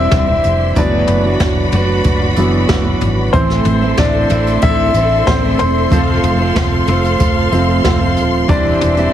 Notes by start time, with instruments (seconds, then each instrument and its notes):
Already playing: upright piano E3 G3 C4 D4 E4 C5 D5 E5, steel-string acoustic guitar G3 C4 E4 C5, string section G4 E5 C6
0.11 fingered electric bass E1, steel-string acoustic guitar G3 C4 E4 C5, kick, snare, closed hi-hat
0.27 steel-string acoustic guitar C4 E4 C5
0.44 fingered electric bass F1, closed hi-hat
0.75 fingered electric bass F#1, upright piano E3 F#3 B3 D4 D5, steel-string acoustic guitar F#3 A3 D4 F#4 B4, string section F#4 D5 B5, kick, closed hi-hat
1.08 fingered electric bass F#1, closed hi-hat, floor tom
1.24 steel-string acoustic guitar D4 F#4 B4
1.40 fingered electric bass F#1, kick, snare, closed hi-hat
1.72 fingered electric bass F#1, steel-string acoustic guitar A3 D4 F#4 B4, closed hi-hat, floor tom
2.04 fingered electric bass F#1, kick, closed hi-hat
2.36 fingered electric bass F#1, upright piano E3 F#3 B3, steel-string acoustic guitar A3 D4 F#4 B4, closed hi-hat
2.69 fingered electric bass F#1, steel-string acoustic guitar A3 D4 F#4 B4, kick, snare, closed hi-hat
2.84 steel-string acoustic guitar D4 F#4 B4
3.01 fingered electric bass G#1, closed hi-hat, floor tom
3.33 fingered electric bass A1, steel-string acoustic guitar A2 E3 A3 C4 E4 C5, upright piano E3 A3 C4 C5, string section A4 E5 C6, kick, closed hi-hat
3.50 snare
3.65 fingered electric bass A1, closed hi-hat, floor tom
3.82 steel-string acoustic guitar A3 C4 E4 C5
3.97 fingered electric bass A1, upright piano D4 D5, kick, snare, closed hi-hat
4.29 fingered electric bass A1, steel-string acoustic guitar A3 C4 E4 C5, closed hi-hat, floor tom
4.47 closed hi-hat
4.62 fingered electric bass A1, upright piano E4 E5, kick, closed hi-hat
4.94 fingered electric bass A1, steel-string acoustic guitar A3 C4 E4, closed hi-hat
4.98 steel-string acoustic guitar C5
5.27 fingered electric bass A1, steel-string acoustic guitar A3 C4 E4 C5, upright piano C4 C5, kick, snare, closed hi-hat
5.42 steel-string acoustic guitar A3 C4 E4 C5
5.59 fingered electric bass E1, upright piano C4 C5, closed hi-hat, floor tom
5.90 fingered electric bass F1, steel-string acoustic guitar F3 A3 C4 F4 C5, upright piano F3 A3 C4, string section F5, kick, closed hi-hat
6.23 fingered electric bass F1, closed hi-hat, floor tom
6.39 steel-string acoustic guitar C4 F4 C5
6.55 fingered electric bass F1, kick, snare, closed hi-hat
6.87 fingered electric bass F1, steel-string acoustic guitar A3 C4 F4 C5, closed hi-hat, floor tom
7.05 closed hi-hat
7.20 fingered electric bass F1, kick, closed hi-hat
7.52 fingered electric bass F1, upright piano F3 A3 C4, steel-string acoustic guitar A3 C4 F4 C5, closed hi-hat
7.84 fingered electric bass F1, steel-string acoustic guitar A3 C4 F4 C5, kick, snare, closed hi-hat
8.00 steel-string acoustic guitar C4 F4 C5
8.17 fingered electric bass D#1, closed hi-hat
8.48 fingered electric bass E1, steel-string acoustic guitar E3 G3 C4 E4 C5, upright piano E3 G3 C4 D4 D5, string section G4 E5, kick, closed hi-hat
8.81 fingered electric bass E1, closed hi-hat, floor tom
8.96 steel-string acoustic guitar C4 E4 C5, closed hi-hat